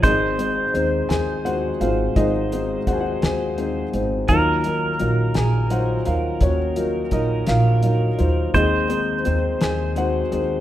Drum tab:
HH |xxxxxx|xxxxxx|xxxxxx|xxxxxx|
SD |---o--|---o--|---o--|---o--|
BD |o-----|o-o---|o-----|o-o---|

HH |xxxxxx|
SD |---o--|
BD |o-----|